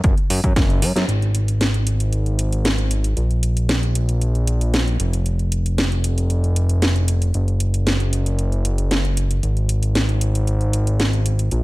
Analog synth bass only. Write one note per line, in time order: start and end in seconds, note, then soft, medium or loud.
0.04 0.14 F#1 medium
0.30 0.40 F#2 medium
0.44 0.53 F#2 medium
0.56 0.83 F#1 medium
0.82 0.92 F#2 medium
0.96 1.05 F#2 medium
1.08 3.15 G#1 medium
3.17 4.97 A#1 medium
5.00 7.32 F1 medium
7.35 9.41 F#1 medium
9.43 11.50 G#1 medium
11.52 11.63 A#1 medium